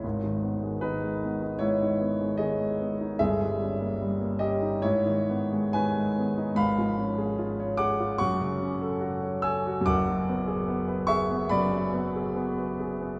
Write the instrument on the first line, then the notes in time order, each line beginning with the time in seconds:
grand piano
0.03 G#1 G#2
0.24 D#3
0.43 B3
0.63 G#3
0.81 D#3 D#4 B4
1.03 G#3
1.24 B3
1.42 D#4
1.59 G#2 E4 C#5
1.83 D#3
2.01 B3
2.21 G#3
2.37 D#3 G#4 D#5
2.60 G#3
2.80 B3
3.01 D#4
3.19 G1 G2 G#4 E5
3.42 G3
3.62 C#4
3.81 A#3
4.01 G3
4.21 A#3
4.39 C#4 G4 D#5
4.62 D#4
4.82 G#2 E4 C#5
5.06 D#3
5.30 B3
5.53 G#3
5.73 D#3 B4 G#5
5.97 G#3
6.18 B3
6.38 D#4
6.55 G#1 G#2 F5 B5
6.78 F3
6.98 C#4
7.18 G#4
7.39 F4
7.60 C#5
7.77 G#4 F#5 D6
8.00 F4
8.18 F#2 F#5 C#6
8.41 C#3
8.62 C#4
8.81 A4
9.01 F#4
9.23 C#5
9.42 A4 G#5 E6
9.67 F#4
9.81 F#2
9.86 F#1 F#5 D6
10.08 F#3
10.29 B3
10.48 G#4
10.68 B3
10.88 B4
11.07 G#4 E5 C#6
11.30 B3
11.49 F#2 D5 B5
11.73 F#3
11.94 B3
12.16 G#4
12.36 B3
12.58 B4
12.80 G#4
13.02 B3